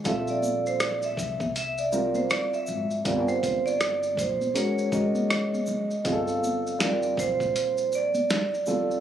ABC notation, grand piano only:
X:1
M:4/4
L:1/8
Q:"Swing 16ths" 1/4=80
K:Gdor
V:1 name="Grand piano"
[G,CFA]3 z2 [G,CFB]3 | [G,CFB]3 z [_A,_D_GB] [A,DGB]3 | [G,CF_A=A]2 [G,CFB]3 z2 [G,CFA] |]